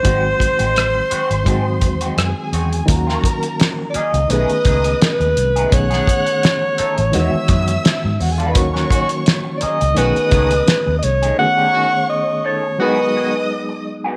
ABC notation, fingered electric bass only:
X:1
M:4/4
L:1/16
Q:"Swing 16ths" 1/4=85
K:Bmix
V:1 name="Fingered electric bass" clef=bass
G,,,2 z A,,,3 z G,,, G,,2 E,,2 F,, z E,,2 | D,,2 z4 z C,, B,,, z C,,2 z D,, ^B,,,2 | B,,,2 z4 z A,,, E,, z F,,2 z G,, E,,2 | D,,2 z4 z C,, B,,, z C,,2 z D,, ^B,,,2 |
z16 |]